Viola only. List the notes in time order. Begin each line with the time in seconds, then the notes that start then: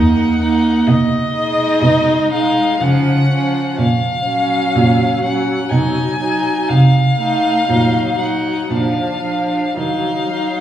Already playing: A#3
0.40 A#3
1.34 G#3
2.30 G#3
2.81 F3
3.29 F3
4.26 F#3
5.23 F#3
5.72 F#3
6.20 F#3
7.19 A3
7.70 F#3
8.20 F#3
8.70 F3
9.23 F3
9.76 F#3
10.30 F#3